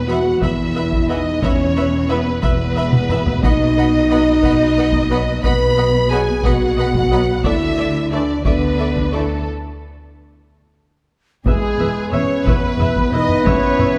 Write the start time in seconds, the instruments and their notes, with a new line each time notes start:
Already playing: double bass section E1, cello section E2
0.08 trombone section E3 B3, french horn section F#4, viola section B4 E5, violin section E5 F#5 B5
0.42 double bass section E1, cello section E2, french horn section E4, viola section B4 E5, violin section E5 B5, taiko
0.76 viola section B4 E5, violin section E5 B5
0.92 taiko
1.08 trombone section E3 B3, french horn section D#4, viola section E4 B4, violin section D#5 E5 B5
1.42 double bass section E1, cello section E2, french horn section C#4, viola section B4 E5, violin section C#5 E5 B5, taiko
1.76 viola section B4 E5, violin section E5 B5
2.08 trombone section E3 B3, french horn section B3, viola section B4 E5, violin section B4 E5 B5
2.42 double bass section E1, cello section E2, french horn section B3, viola section B4 E5, violin section B4 E5 B5, taiko
2.76 viola section B4 E5, violin section E5 B5
2.93 taiko mid
3.10 trombone section E3 B3, viola section B4 E5, violin section E5 B5, taiko low-mid
3.26 taiko low
3.43 double bass section B1, cello section B2, french horn section D#4, viola section B4 D#5, violin section D#5 F#5 B5, taiko
3.77 viola section B4 D#5, violin section F#5 B5
4.09 trombone section F#3 B3, viola section B4 D#5, violin section F#5 B5
4.43 double bass section B1, cello section B2, viola section B4 D#5, violin section F#5 B5, taiko
4.76 viola section B4 D#5, violin section F#5 B5
4.93 taiko
5.10 trombone section F#3 B3, viola section B4 D#5, violin section F#5 B5
5.43 double bass section B1, cello section B2, french horn section B4, viola section B4 D#5, violin section F#5 B5, taiko
5.77 viola section B4 D#5, violin section F#5 B5
6.10 trombone section F#3 B3, french horn section G#4, viola section B4 D#5, violin section F#5 G#5 B5
6.44 double bass section B1, cello section B2, french horn section F#4, viola section B4 D#5, violin section F#5 B5, taiko
6.77 viola section B4 D#5, violin section F#5 B5
6.94 taiko
7.11 trombone section F#3 B3, viola section B4 D#5, violin section F#5 B5
7.44 double bass section D2, cello section D3, french horn section E4, viola section A4 D5, violin section D5 E5, taiko
7.78 viola section A4 D5, violin section D5 E5
8.11 trombone section E3 A3, french horn section D4, viola section A4 D5, violin section D5 E5
8.45 double bass section D2, cello section D3, french horn section B3, viola section A4 D5, violin section B4 D5 E5, taiko
8.79 viola section A4 D5, violin section D5 E5
8.95 taiko
9.12 trombone section E3 A3, french horn section A3, viola section A4 D5, violin section A4 D5 E5
11.46 double bass section E1, cello section E2, trombone section E3 B3, french horn section G#3, flute section G#4, violin section G#4, trumpet section B4, viola section B4 E5, taiko
11.79 double bass section E1, cello section E2, viola section B4 E5, taiko low-mid
12.12 double bass section E1, cello section E2, french horn section C#4, viola section B4 E5, flute section C#5, violin section C#5, taiko low-mid
12.45 double bass section E1, cello section E2, french horn section B3, flute section B4, violin section B4, viola section B4 E5, taiko
12.63 taiko low-mid
12.79 double bass section E1, cello section E2, viola section B4 E5, taiko low-mid
12.96 taiko
13.12 double bass section E1, cello section E2, french horn section D#4, viola section E4 B4, flute section D#5, violin section D#5
13.29 taiko low-mid
13.45 double bass section E1, cello section E2, french horn section C#4, viola section B4 E5, flute section C#5, violin section C#5, taiko
13.79 double bass section E1, cello section E2, viola section B4 E5, taiko low-mid